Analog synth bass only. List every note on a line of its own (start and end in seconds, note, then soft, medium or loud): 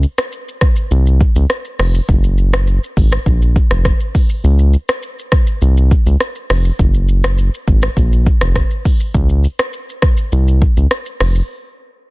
0.91 1.23 C2 loud
1.36 1.46 C#2 loud
1.79 2.00 F1 loud
2.09 2.79 F#1 loud
2.97 3.18 G#1 loud
3.26 3.58 A#1 loud
3.71 3.92 F1 loud
4.44 4.76 C#2 loud
5.62 5.94 C2 loud
6.06 6.16 C#2 loud
6.50 6.71 F1 medium
6.79 7.50 F#1 loud
7.68 7.89 G#1 loud
7.97 8.29 A#1 medium
8.42 8.63 F1 loud
9.15 9.47 C#2 loud
10.32 10.64 C2 loud
10.77 10.87 C#2 loud
11.20 11.41 F1 medium